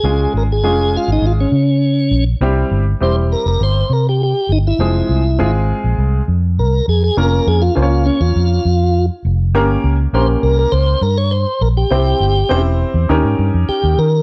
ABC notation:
X:1
M:4/4
L:1/16
Q:1/4=101
K:Fm
V:1 name="Tonewheel organ"
A2 B A3 F E F D6 z | z4 c2 B B c2 B G G2 E =E- | =E4- E z6 z B2 A A | B2 A F F2 D F6 z3 |
z4 c2 B B c2 B d c2 B G- | G4- G z6 z G2 B2 |]
V:2 name="Grand piano"
[A,DFA]2 z2 [A,DFA]6 z6 | [G,C=EG]2 z2 [G,CEG]6 z6 | [F,A,CA]2 z2 [A,CFA]6 z6 | [B,DFB]2 z2 [B,DFcd]6 z6 |
[B,DGB]2 z2 [B,DGB]6 z6 | [C=EGc]2 z2 [CDEGc]4 [D_EGB]6 z2 |]
V:3 name="Fingered electric bass" clef=bass
D,,2 A,,,2 F,,,3 A,,, A,,,2 D,4 B,,,2 | C,,2 G,,,2 =E,,,3 F,,, G,,,2 C,4 G,,,2 | F,,,2 C,,2 A,,,3 B,,, C,,2 F,,2 C,,2 F,,2 | F,,,2 F,,2 D,,3 =E,, F,,2 F,,4 F,,,2 |
G,,,2 D,,2 B,,,2 C,,2 D,,2 G,,4 B,,,2 | C,,2 G,,,2 =E,,,3 =E,, _E,, A,, G,, F,, z E,, E,2 |]